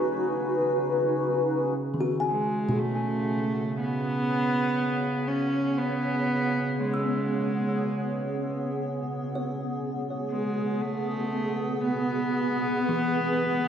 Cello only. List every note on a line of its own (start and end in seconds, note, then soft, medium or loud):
0.00 0.29 A3 medium
2.30 2.80 G#3 medium
2.79 3.79 A3 medium
3.80 5.29 B3 loud
5.28 5.80 C#4 medium
5.78 6.81 B3 medium
6.79 8.79 G#3 medium
10.30 10.82 G#3 medium
10.81 11.82 A3 loud
11.80 13.68 B3 loud